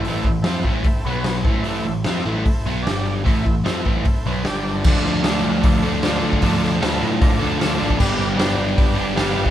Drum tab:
CC |----------------|----------------|----------------|x---------------|
HH |o---o---o---o---|o---o---o---o---|o---o---o---o---|----o---o---o---|
SD |----o-------o---|----o-------o---|----o-------o---|--o-o-------o---|
BD |--o---o-o-----o-|--------o-------|o-o---o-o-------|o-------o------o|

CC |----------------|x---------------|
HH |o---o---o---o---|----o---o---o---|
SD |--o-o-------o---|--o-o-------o---|
BD |o-------o------o|o-------o------o|